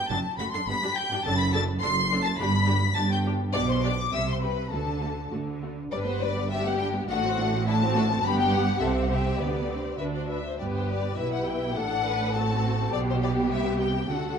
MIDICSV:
0, 0, Header, 1, 6, 480
1, 0, Start_track
1, 0, Key_signature, 1, "major"
1, 0, Tempo, 573614
1, 86, Time_signature, 2, 2, 24, 8
1, 2964, Tempo, 593472
1, 5364, Tempo, 575264
1, 7284, Tempo, 585938
1, 11852, End_track
2, 0, Start_track
2, 0, Title_t, "Violin section"
2, 0, Program_c, 0, 48
2, 0, Note_on_c, 0, 91, 106
2, 83, Note_on_c, 0, 93, 122
2, 86, Note_off_c, 0, 91, 0
2, 150, Note_off_c, 0, 93, 0
2, 326, Note_on_c, 0, 95, 116
2, 376, Note_off_c, 0, 95, 0
2, 460, Note_on_c, 0, 96, 106
2, 506, Note_off_c, 0, 96, 0
2, 575, Note_on_c, 0, 95, 127
2, 808, Note_off_c, 0, 95, 0
2, 815, Note_on_c, 0, 91, 122
2, 1053, Note_off_c, 0, 91, 0
2, 1055, Note_on_c, 0, 93, 127
2, 1171, Note_off_c, 0, 93, 0
2, 1177, Note_on_c, 0, 95, 127
2, 1293, Note_on_c, 0, 93, 127
2, 1294, Note_off_c, 0, 95, 0
2, 1360, Note_off_c, 0, 93, 0
2, 1523, Note_on_c, 0, 96, 127
2, 1876, Note_off_c, 0, 96, 0
2, 1899, Note_on_c, 0, 93, 120
2, 2003, Note_on_c, 0, 95, 127
2, 2011, Note_off_c, 0, 93, 0
2, 2471, Note_off_c, 0, 95, 0
2, 2472, Note_on_c, 0, 93, 126
2, 2597, Note_off_c, 0, 93, 0
2, 2614, Note_on_c, 0, 91, 107
2, 2659, Note_off_c, 0, 91, 0
2, 2963, Note_on_c, 0, 86, 118
2, 3072, Note_off_c, 0, 86, 0
2, 3092, Note_on_c, 0, 84, 108
2, 3195, Note_on_c, 0, 86, 118
2, 3204, Note_off_c, 0, 84, 0
2, 3435, Note_off_c, 0, 86, 0
2, 3445, Note_on_c, 0, 88, 123
2, 3561, Note_off_c, 0, 88, 0
2, 3571, Note_on_c, 0, 84, 101
2, 3666, Note_on_c, 0, 83, 84
2, 3684, Note_off_c, 0, 84, 0
2, 3908, Note_off_c, 0, 83, 0
2, 3915, Note_on_c, 0, 81, 95
2, 4402, Note_off_c, 0, 81, 0
2, 4886, Note_on_c, 0, 74, 109
2, 4933, Note_off_c, 0, 74, 0
2, 4996, Note_on_c, 0, 72, 105
2, 5118, Note_off_c, 0, 72, 0
2, 5125, Note_on_c, 0, 74, 119
2, 5358, Note_on_c, 0, 76, 118
2, 5362, Note_off_c, 0, 74, 0
2, 5479, Note_off_c, 0, 76, 0
2, 5486, Note_on_c, 0, 78, 107
2, 5601, Note_on_c, 0, 79, 115
2, 5605, Note_off_c, 0, 78, 0
2, 5668, Note_off_c, 0, 79, 0
2, 5852, Note_on_c, 0, 78, 127
2, 6319, Note_off_c, 0, 78, 0
2, 6335, Note_on_c, 0, 81, 127
2, 6799, Note_off_c, 0, 81, 0
2, 6817, Note_on_c, 0, 83, 127
2, 6927, Note_on_c, 0, 79, 127
2, 6930, Note_off_c, 0, 83, 0
2, 7042, Note_off_c, 0, 79, 0
2, 7043, Note_on_c, 0, 78, 127
2, 7282, Note_on_c, 0, 76, 102
2, 7283, Note_off_c, 0, 78, 0
2, 7340, Note_on_c, 0, 78, 102
2, 7348, Note_off_c, 0, 76, 0
2, 7409, Note_on_c, 0, 76, 103
2, 7410, Note_off_c, 0, 78, 0
2, 7470, Note_on_c, 0, 78, 88
2, 7477, Note_off_c, 0, 76, 0
2, 7541, Note_off_c, 0, 78, 0
2, 7550, Note_on_c, 0, 76, 111
2, 7760, Note_on_c, 0, 74, 101
2, 7763, Note_off_c, 0, 76, 0
2, 8247, Note_off_c, 0, 74, 0
2, 8258, Note_on_c, 0, 71, 87
2, 8304, Note_off_c, 0, 71, 0
2, 8385, Note_on_c, 0, 72, 77
2, 8498, Note_off_c, 0, 72, 0
2, 8504, Note_on_c, 0, 71, 73
2, 8619, Note_off_c, 0, 71, 0
2, 8636, Note_on_c, 0, 72, 79
2, 8741, Note_on_c, 0, 74, 102
2, 8745, Note_off_c, 0, 72, 0
2, 8789, Note_off_c, 0, 74, 0
2, 8874, Note_on_c, 0, 72, 86
2, 8983, Note_off_c, 0, 72, 0
2, 8998, Note_on_c, 0, 74, 98
2, 9221, Note_off_c, 0, 74, 0
2, 9222, Note_on_c, 0, 76, 108
2, 9338, Note_off_c, 0, 76, 0
2, 9347, Note_on_c, 0, 78, 93
2, 9452, Note_on_c, 0, 79, 107
2, 9458, Note_off_c, 0, 78, 0
2, 9693, Note_off_c, 0, 79, 0
2, 9696, Note_on_c, 0, 78, 124
2, 10174, Note_off_c, 0, 78, 0
2, 10176, Note_on_c, 0, 81, 122
2, 10649, Note_off_c, 0, 81, 0
2, 10660, Note_on_c, 0, 74, 127
2, 10705, Note_off_c, 0, 74, 0
2, 10803, Note_on_c, 0, 72, 109
2, 10843, Note_off_c, 0, 72, 0
2, 10909, Note_on_c, 0, 74, 102
2, 10975, Note_off_c, 0, 74, 0
2, 11145, Note_on_c, 0, 76, 114
2, 11368, Note_off_c, 0, 76, 0
2, 11375, Note_on_c, 0, 79, 103
2, 11604, Note_off_c, 0, 79, 0
2, 11629, Note_on_c, 0, 78, 93
2, 11852, Note_off_c, 0, 78, 0
2, 11852, End_track
3, 0, Start_track
3, 0, Title_t, "Violin section"
3, 0, Program_c, 1, 48
3, 80, Note_on_c, 1, 81, 81
3, 319, Note_on_c, 1, 83, 91
3, 322, Note_off_c, 1, 81, 0
3, 433, Note_on_c, 1, 84, 88
3, 443, Note_off_c, 1, 83, 0
3, 560, Note_off_c, 1, 84, 0
3, 560, Note_on_c, 1, 83, 96
3, 800, Note_on_c, 1, 79, 110
3, 806, Note_off_c, 1, 83, 0
3, 1039, Note_on_c, 1, 81, 105
3, 1045, Note_off_c, 1, 79, 0
3, 1158, Note_on_c, 1, 83, 99
3, 1165, Note_off_c, 1, 81, 0
3, 1282, Note_off_c, 1, 83, 0
3, 1282, Note_on_c, 1, 81, 101
3, 1349, Note_off_c, 1, 81, 0
3, 1513, Note_on_c, 1, 84, 115
3, 1863, Note_on_c, 1, 81, 111
3, 1871, Note_off_c, 1, 84, 0
3, 1915, Note_off_c, 1, 81, 0
3, 1992, Note_on_c, 1, 83, 102
3, 2466, Note_off_c, 1, 83, 0
3, 2467, Note_on_c, 1, 81, 100
3, 2518, Note_off_c, 1, 81, 0
3, 2588, Note_on_c, 1, 79, 93
3, 2713, Note_off_c, 1, 79, 0
3, 2955, Note_on_c, 1, 74, 113
3, 3004, Note_off_c, 1, 74, 0
3, 3078, Note_on_c, 1, 72, 91
3, 3195, Note_off_c, 1, 72, 0
3, 3204, Note_on_c, 1, 74, 88
3, 3269, Note_off_c, 1, 74, 0
3, 3432, Note_on_c, 1, 76, 94
3, 3552, Note_off_c, 1, 76, 0
3, 3560, Note_on_c, 1, 72, 77
3, 3671, Note_on_c, 1, 71, 84
3, 3676, Note_off_c, 1, 72, 0
3, 3915, Note_on_c, 1, 69, 64
3, 3916, Note_off_c, 1, 71, 0
3, 4392, Note_off_c, 1, 69, 0
3, 4891, Note_on_c, 1, 71, 95
3, 5332, Note_off_c, 1, 71, 0
3, 5363, Note_on_c, 1, 67, 95
3, 5835, Note_off_c, 1, 67, 0
3, 5852, Note_on_c, 1, 66, 91
3, 6318, Note_off_c, 1, 66, 0
3, 6326, Note_on_c, 1, 64, 90
3, 6392, Note_off_c, 1, 64, 0
3, 6579, Note_on_c, 1, 66, 101
3, 6645, Note_off_c, 1, 66, 0
3, 6809, Note_on_c, 1, 67, 104
3, 7276, Note_off_c, 1, 67, 0
3, 7285, Note_on_c, 1, 69, 89
3, 7350, Note_off_c, 1, 69, 0
3, 7524, Note_on_c, 1, 67, 84
3, 7758, Note_off_c, 1, 67, 0
3, 7762, Note_on_c, 1, 71, 70
3, 8199, Note_off_c, 1, 71, 0
3, 8243, Note_on_c, 1, 76, 74
3, 8293, Note_off_c, 1, 76, 0
3, 8380, Note_on_c, 1, 74, 53
3, 8490, Note_on_c, 1, 76, 70
3, 8495, Note_off_c, 1, 74, 0
3, 8730, Note_off_c, 1, 76, 0
3, 8744, Note_on_c, 1, 67, 79
3, 9186, Note_off_c, 1, 67, 0
3, 9222, Note_on_c, 1, 71, 80
3, 9697, Note_off_c, 1, 71, 0
3, 9702, Note_on_c, 1, 69, 82
3, 10168, Note_off_c, 1, 69, 0
3, 10182, Note_on_c, 1, 66, 82
3, 10651, Note_on_c, 1, 67, 90
3, 10652, Note_off_c, 1, 66, 0
3, 11603, Note_off_c, 1, 67, 0
3, 11608, Note_on_c, 1, 69, 70
3, 11852, Note_off_c, 1, 69, 0
3, 11852, End_track
4, 0, Start_track
4, 0, Title_t, "Viola section"
4, 0, Program_c, 2, 48
4, 83, Note_on_c, 2, 62, 87
4, 87, Note_on_c, 2, 54, 98
4, 132, Note_off_c, 2, 62, 0
4, 135, Note_off_c, 2, 54, 0
4, 327, Note_on_c, 2, 66, 81
4, 328, Note_on_c, 2, 57, 70
4, 376, Note_off_c, 2, 66, 0
4, 377, Note_off_c, 2, 57, 0
4, 450, Note_on_c, 2, 62, 67
4, 450, Note_on_c, 2, 69, 68
4, 498, Note_off_c, 2, 69, 0
4, 499, Note_off_c, 2, 62, 0
4, 578, Note_on_c, 2, 55, 89
4, 579, Note_on_c, 2, 59, 91
4, 625, Note_off_c, 2, 55, 0
4, 625, Note_off_c, 2, 59, 0
4, 691, Note_on_c, 2, 62, 72
4, 694, Note_on_c, 2, 67, 71
4, 739, Note_off_c, 2, 62, 0
4, 741, Note_off_c, 2, 67, 0
4, 932, Note_on_c, 2, 67, 83
4, 933, Note_on_c, 2, 62, 77
4, 980, Note_off_c, 2, 62, 0
4, 980, Note_off_c, 2, 67, 0
4, 1048, Note_on_c, 2, 69, 85
4, 1049, Note_on_c, 2, 62, 82
4, 1114, Note_off_c, 2, 69, 0
4, 1116, Note_off_c, 2, 62, 0
4, 1287, Note_on_c, 2, 62, 84
4, 1287, Note_on_c, 2, 69, 82
4, 1354, Note_off_c, 2, 62, 0
4, 1354, Note_off_c, 2, 69, 0
4, 1527, Note_on_c, 2, 69, 86
4, 1531, Note_on_c, 2, 62, 84
4, 1594, Note_off_c, 2, 69, 0
4, 1598, Note_off_c, 2, 62, 0
4, 1767, Note_on_c, 2, 62, 73
4, 1771, Note_on_c, 2, 69, 83
4, 1834, Note_off_c, 2, 62, 0
4, 1838, Note_off_c, 2, 69, 0
4, 2008, Note_on_c, 2, 62, 87
4, 2010, Note_on_c, 2, 67, 93
4, 2075, Note_off_c, 2, 62, 0
4, 2077, Note_off_c, 2, 67, 0
4, 2234, Note_on_c, 2, 67, 86
4, 2237, Note_on_c, 2, 62, 83
4, 2301, Note_off_c, 2, 67, 0
4, 2304, Note_off_c, 2, 62, 0
4, 2473, Note_on_c, 2, 62, 76
4, 2475, Note_on_c, 2, 67, 78
4, 2540, Note_off_c, 2, 62, 0
4, 2542, Note_off_c, 2, 67, 0
4, 2726, Note_on_c, 2, 62, 76
4, 2726, Note_on_c, 2, 67, 82
4, 2793, Note_off_c, 2, 62, 0
4, 2793, Note_off_c, 2, 67, 0
4, 2960, Note_on_c, 2, 62, 86
4, 2962, Note_on_c, 2, 67, 87
4, 3025, Note_off_c, 2, 62, 0
4, 3027, Note_off_c, 2, 67, 0
4, 3197, Note_on_c, 2, 62, 82
4, 3199, Note_on_c, 2, 67, 72
4, 3262, Note_off_c, 2, 62, 0
4, 3264, Note_off_c, 2, 67, 0
4, 3431, Note_on_c, 2, 60, 68
4, 3432, Note_on_c, 2, 67, 71
4, 3495, Note_off_c, 2, 60, 0
4, 3497, Note_off_c, 2, 67, 0
4, 3674, Note_on_c, 2, 60, 63
4, 3675, Note_on_c, 2, 67, 65
4, 3739, Note_off_c, 2, 60, 0
4, 3739, Note_off_c, 2, 67, 0
4, 3914, Note_on_c, 2, 57, 65
4, 3915, Note_on_c, 2, 66, 65
4, 3979, Note_off_c, 2, 57, 0
4, 3980, Note_off_c, 2, 66, 0
4, 4149, Note_on_c, 2, 57, 60
4, 4149, Note_on_c, 2, 66, 62
4, 4213, Note_off_c, 2, 57, 0
4, 4213, Note_off_c, 2, 66, 0
4, 4396, Note_on_c, 2, 66, 56
4, 4402, Note_on_c, 2, 57, 56
4, 4461, Note_off_c, 2, 66, 0
4, 4466, Note_off_c, 2, 57, 0
4, 4644, Note_on_c, 2, 66, 57
4, 4648, Note_on_c, 2, 57, 58
4, 4709, Note_off_c, 2, 66, 0
4, 4713, Note_off_c, 2, 57, 0
4, 4889, Note_on_c, 2, 62, 71
4, 4891, Note_on_c, 2, 55, 73
4, 4999, Note_off_c, 2, 62, 0
4, 4999, Note_on_c, 2, 59, 67
4, 4999, Note_on_c, 2, 67, 67
4, 5000, Note_off_c, 2, 55, 0
4, 5121, Note_off_c, 2, 59, 0
4, 5122, Note_off_c, 2, 67, 0
4, 5126, Note_on_c, 2, 55, 73
4, 5126, Note_on_c, 2, 62, 74
4, 5240, Note_on_c, 2, 67, 68
4, 5243, Note_on_c, 2, 59, 68
4, 5244, Note_off_c, 2, 55, 0
4, 5244, Note_off_c, 2, 62, 0
4, 5352, Note_on_c, 2, 55, 73
4, 5353, Note_on_c, 2, 62, 76
4, 5360, Note_off_c, 2, 67, 0
4, 5361, Note_off_c, 2, 59, 0
4, 5469, Note_off_c, 2, 55, 0
4, 5470, Note_off_c, 2, 62, 0
4, 5477, Note_on_c, 2, 59, 77
4, 5479, Note_on_c, 2, 67, 73
4, 5593, Note_on_c, 2, 62, 76
4, 5597, Note_on_c, 2, 55, 78
4, 5601, Note_off_c, 2, 59, 0
4, 5601, Note_off_c, 2, 67, 0
4, 5719, Note_off_c, 2, 62, 0
4, 5720, Note_off_c, 2, 55, 0
4, 5720, Note_on_c, 2, 67, 68
4, 5723, Note_on_c, 2, 59, 69
4, 5842, Note_off_c, 2, 67, 0
4, 5844, Note_off_c, 2, 59, 0
4, 5846, Note_on_c, 2, 62, 82
4, 5847, Note_on_c, 2, 57, 91
4, 5956, Note_off_c, 2, 62, 0
4, 5957, Note_off_c, 2, 57, 0
4, 5972, Note_on_c, 2, 60, 79
4, 5972, Note_on_c, 2, 66, 77
4, 6088, Note_off_c, 2, 60, 0
4, 6088, Note_off_c, 2, 66, 0
4, 6094, Note_on_c, 2, 62, 83
4, 6097, Note_on_c, 2, 57, 87
4, 6209, Note_off_c, 2, 62, 0
4, 6210, Note_off_c, 2, 57, 0
4, 6215, Note_on_c, 2, 60, 80
4, 6217, Note_on_c, 2, 66, 78
4, 6329, Note_off_c, 2, 60, 0
4, 6330, Note_off_c, 2, 66, 0
4, 6336, Note_on_c, 2, 57, 88
4, 6336, Note_on_c, 2, 62, 95
4, 6442, Note_off_c, 2, 57, 0
4, 6442, Note_off_c, 2, 62, 0
4, 6450, Note_on_c, 2, 60, 96
4, 6452, Note_on_c, 2, 66, 87
4, 6567, Note_off_c, 2, 60, 0
4, 6568, Note_off_c, 2, 66, 0
4, 6579, Note_on_c, 2, 57, 90
4, 6581, Note_on_c, 2, 62, 86
4, 6691, Note_off_c, 2, 57, 0
4, 6692, Note_off_c, 2, 62, 0
4, 6696, Note_on_c, 2, 66, 81
4, 6700, Note_on_c, 2, 60, 82
4, 6809, Note_off_c, 2, 66, 0
4, 6811, Note_off_c, 2, 60, 0
4, 6813, Note_on_c, 2, 59, 92
4, 6815, Note_on_c, 2, 67, 102
4, 7254, Note_off_c, 2, 59, 0
4, 7255, Note_off_c, 2, 67, 0
4, 7287, Note_on_c, 2, 67, 91
4, 7290, Note_on_c, 2, 60, 95
4, 7754, Note_off_c, 2, 67, 0
4, 7765, Note_off_c, 2, 60, 0
4, 7771, Note_on_c, 2, 67, 67
4, 7772, Note_on_c, 2, 59, 76
4, 8009, Note_off_c, 2, 59, 0
4, 8011, Note_on_c, 2, 60, 64
4, 8242, Note_off_c, 2, 67, 0
4, 8249, Note_on_c, 2, 62, 66
4, 8251, Note_off_c, 2, 60, 0
4, 8253, Note_on_c, 2, 66, 62
4, 8564, Note_off_c, 2, 62, 0
4, 8572, Note_off_c, 2, 66, 0
4, 8735, Note_on_c, 2, 71, 66
4, 8737, Note_on_c, 2, 59, 66
4, 9182, Note_off_c, 2, 71, 0
4, 9183, Note_off_c, 2, 59, 0
4, 9229, Note_on_c, 2, 64, 76
4, 9229, Note_on_c, 2, 67, 67
4, 9699, Note_on_c, 2, 62, 75
4, 9701, Note_off_c, 2, 64, 0
4, 9701, Note_off_c, 2, 67, 0
4, 9706, Note_on_c, 2, 69, 76
4, 9940, Note_off_c, 2, 69, 0
4, 9940, Note_on_c, 2, 71, 91
4, 10176, Note_off_c, 2, 62, 0
4, 10176, Note_off_c, 2, 71, 0
4, 10178, Note_on_c, 2, 69, 78
4, 10179, Note_on_c, 2, 60, 82
4, 10641, Note_off_c, 2, 69, 0
4, 10642, Note_off_c, 2, 60, 0
4, 10653, Note_on_c, 2, 67, 74
4, 10656, Note_on_c, 2, 59, 87
4, 11120, Note_off_c, 2, 67, 0
4, 11130, Note_on_c, 2, 67, 83
4, 11596, Note_off_c, 2, 67, 0
4, 11606, Note_off_c, 2, 59, 0
4, 11609, Note_on_c, 2, 57, 61
4, 11609, Note_on_c, 2, 66, 68
4, 11852, Note_off_c, 2, 57, 0
4, 11852, Note_off_c, 2, 66, 0
4, 11852, End_track
5, 0, Start_track
5, 0, Title_t, "Cello section"
5, 0, Program_c, 3, 48
5, 83, Note_on_c, 3, 42, 113
5, 133, Note_off_c, 3, 42, 0
5, 321, Note_on_c, 3, 42, 71
5, 372, Note_off_c, 3, 42, 0
5, 444, Note_on_c, 3, 42, 73
5, 494, Note_off_c, 3, 42, 0
5, 568, Note_on_c, 3, 43, 109
5, 617, Note_off_c, 3, 43, 0
5, 686, Note_on_c, 3, 43, 71
5, 735, Note_off_c, 3, 43, 0
5, 926, Note_on_c, 3, 43, 83
5, 975, Note_off_c, 3, 43, 0
5, 1048, Note_on_c, 3, 42, 112
5, 1472, Note_off_c, 3, 42, 0
5, 1531, Note_on_c, 3, 42, 98
5, 1950, Note_off_c, 3, 42, 0
5, 2009, Note_on_c, 3, 43, 112
5, 2427, Note_off_c, 3, 43, 0
5, 2494, Note_on_c, 3, 43, 106
5, 2912, Note_off_c, 3, 43, 0
5, 2968, Note_on_c, 3, 47, 110
5, 3383, Note_off_c, 3, 47, 0
5, 3444, Note_on_c, 3, 48, 83
5, 3866, Note_off_c, 3, 48, 0
5, 3925, Note_on_c, 3, 50, 92
5, 4350, Note_off_c, 3, 50, 0
5, 4400, Note_on_c, 3, 50, 77
5, 4828, Note_off_c, 3, 50, 0
5, 4892, Note_on_c, 3, 43, 97
5, 5814, Note_off_c, 3, 43, 0
5, 5849, Note_on_c, 3, 45, 115
5, 6803, Note_on_c, 3, 43, 122
5, 6806, Note_off_c, 3, 45, 0
5, 7249, Note_off_c, 3, 43, 0
5, 7289, Note_on_c, 3, 48, 91
5, 7755, Note_off_c, 3, 48, 0
5, 7773, Note_on_c, 3, 50, 82
5, 8243, Note_off_c, 3, 50, 0
5, 8259, Note_on_c, 3, 50, 63
5, 8569, Note_off_c, 3, 50, 0
5, 8735, Note_on_c, 3, 43, 78
5, 9181, Note_off_c, 3, 43, 0
5, 9220, Note_on_c, 3, 47, 78
5, 9693, Note_on_c, 3, 45, 95
5, 9696, Note_off_c, 3, 47, 0
5, 10647, Note_off_c, 3, 45, 0
5, 10657, Note_on_c, 3, 47, 102
5, 11118, Note_off_c, 3, 47, 0
5, 11131, Note_on_c, 3, 48, 89
5, 11605, Note_on_c, 3, 50, 76
5, 11606, Note_off_c, 3, 48, 0
5, 11852, Note_off_c, 3, 50, 0
5, 11852, End_track
6, 0, Start_track
6, 0, Title_t, "Double bass section"
6, 0, Program_c, 4, 48
6, 81, Note_on_c, 4, 30, 99
6, 131, Note_off_c, 4, 30, 0
6, 321, Note_on_c, 4, 30, 72
6, 371, Note_off_c, 4, 30, 0
6, 559, Note_on_c, 4, 31, 102
6, 610, Note_off_c, 4, 31, 0
6, 1047, Note_on_c, 4, 30, 103
6, 1472, Note_off_c, 4, 30, 0
6, 1530, Note_on_c, 4, 30, 112
6, 1949, Note_off_c, 4, 30, 0
6, 2005, Note_on_c, 4, 31, 112
6, 2425, Note_off_c, 4, 31, 0
6, 2477, Note_on_c, 4, 31, 106
6, 2903, Note_off_c, 4, 31, 0
6, 2958, Note_on_c, 4, 35, 105
6, 3377, Note_off_c, 4, 35, 0
6, 3432, Note_on_c, 4, 36, 91
6, 3860, Note_off_c, 4, 36, 0
6, 3918, Note_on_c, 4, 38, 82
6, 4346, Note_off_c, 4, 38, 0
6, 4396, Note_on_c, 4, 38, 72
6, 4826, Note_off_c, 4, 38, 0
6, 4880, Note_on_c, 4, 31, 87
6, 5807, Note_off_c, 4, 31, 0
6, 5841, Note_on_c, 4, 33, 103
6, 6799, Note_on_c, 4, 31, 113
6, 6802, Note_off_c, 4, 33, 0
6, 7247, Note_off_c, 4, 31, 0
6, 7279, Note_on_c, 4, 36, 102
6, 7750, Note_off_c, 4, 36, 0
6, 7762, Note_on_c, 4, 38, 76
6, 8232, Note_off_c, 4, 38, 0
6, 8241, Note_on_c, 4, 38, 69
6, 8560, Note_off_c, 4, 38, 0
6, 8730, Note_on_c, 4, 31, 75
6, 9179, Note_off_c, 4, 31, 0
6, 9214, Note_on_c, 4, 35, 80
6, 9690, Note_on_c, 4, 33, 82
6, 9693, Note_off_c, 4, 35, 0
6, 10644, Note_on_c, 4, 35, 88
6, 10646, Note_off_c, 4, 33, 0
6, 11112, Note_off_c, 4, 35, 0
6, 11124, Note_on_c, 4, 36, 97
6, 11602, Note_off_c, 4, 36, 0
6, 11606, Note_on_c, 4, 38, 74
6, 11852, Note_off_c, 4, 38, 0
6, 11852, End_track
0, 0, End_of_file